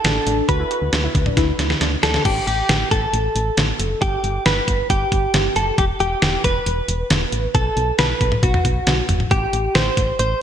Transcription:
Already playing: A4
0.05 A1 D4, snare, closed hi-hat
0.27 A1 D4, closed hi-hat
0.49 D2 F#4 B4, kick, closed hi-hat
0.60 E4
0.71 F#4, closed hi-hat
0.82 D2
0.93 D2, snare, closed hi-hat
1.04 E4
1.15 D2, kick, closed hi-hat
1.26 D4, mid tom
1.37 D2 E4, kick, snare, closed hi-hat
1.59 D2, snare, closed hi-hat
1.70 snare
1.81 D2 D4, snare, closed hi-hat
2.03 D2 D4 A4, snare, closed hi-hat
2.14 snare
2.25 A1 G4, kick, closed hi-hat, crash
2.47 A1 G4, closed hi-hat
2.69 A1, snare, closed hi-hat
2.91 A1 A4, kick, closed hi-hat
3.13 A1, closed hi-hat
3.35 A1, closed hi-hat
3.57 A1, snare, closed hi-hat
3.80 F#1, closed hi-hat
4.02 G1 G4, kick, closed hi-hat
4.24 G1, closed hi-hat
4.46 G1 B4, snare, closed hi-hat
4.68 G1, kick, closed hi-hat
4.90 G1 G4, kick, closed hi-hat
5.12 G1, kick, closed hi-hat
5.34 G1, snare, closed hi-hat
5.56 F#1 A4, closed hi-hat
5.78 E1 G4, kick, closed hi-hat
6.00 E1 G4, closed hi-hat
6.22 E1, snare, closed hi-hat
6.44 E1 B4, kick, closed hi-hat
6.66 E1, closed hi-hat
6.88 E1, closed hi-hat
7.10 E1, snare, closed hi-hat
7.32 A1, closed hi-hat
7.55 B1 A4, kick, closed hi-hat
7.77 B1, closed hi-hat
7.99 B1 B4, snare, closed hi-hat
8.21 B1, kick, closed hi-hat
8.32 mid tom
8.43 B1 F#4, kick, closed hi-hat
8.54 mid tom
8.65 B1, kick, closed hi-hat
8.87 B1, snare, closed hi-hat
9.09 G1, closed hi-hat, mid tom
9.20 mid tom
9.31 A1 G4, kick, closed hi-hat
9.53 A1, closed hi-hat
9.75 A1 C5, snare, closed hi-hat
9.97 A1, kick, closed hi-hat
10.19 A1 C5, closed hi-hat

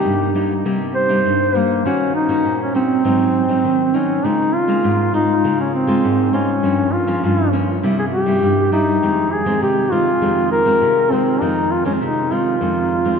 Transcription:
Already playing: G3 A#3 D#4 G4
0.05 G2
0.35 G3 A#3 D#4
0.65 C3 G3 A#3 D#4
0.95 C5
1.09 G3 A#3 D#4
1.26 G2
1.55 G3 A#3 D#4
1.85 D#3 A#3 C#4 F#4
2.15 D#4
2.29 A#3 C#4 F#4
2.45 A#2
2.62 C#4
2.74 A#3 C4 C#4 F#4
3.04 G#2 F#3 C4 D#4
3.48 F#3 C4 D#4
3.64 D#3
3.94 F#3 C4 C#4 D#4
4.24 C#3 G#3 A#3 D#4 F4
4.55 F4
4.68 G#3 A#3 F4
4.84 G#2
5.13 G#3 A#3 D#4 F4
5.44 C#3 G#3 A#3 F4
5.61 C#4
5.74 C4
5.87 G#3 A#3 F4
6.04 G#2
6.33 G#3 A#3 C#4 F4
6.63 G2 F3 A#3 C#4
6.93 F4
7.07 F3 A#3 C#4
7.23 G2 F4
7.52 F3 A#3 C#4
7.83 C3 G3 A#3 E4
7.99 G#4
8.13 G4
8.26 G3 A#3 E4
8.43 G2
8.72 G3 A#3 D#4 E4
9.02 F2 D#3 G#3 C4
9.32 G#4
9.45 D#3 G#3 C4
9.62 C3 G4
9.92 D#3 G#3 C4 F4
10.22 F2 D#3 G#3 C4
10.52 A#4
10.65 D#3 G#3 C4
10.82 C3
11.11 D#3 G#3 C4
11.41 F2 D#3 G#3 C4 D#4
11.72 F4
11.85 D#3 G#3 C4 C#4
12.02 C3 D#4
12.31 D#3 G#3 C4 F4
12.61 F2 D#3 G#3 C4
13.05 D#3 G#3 C4

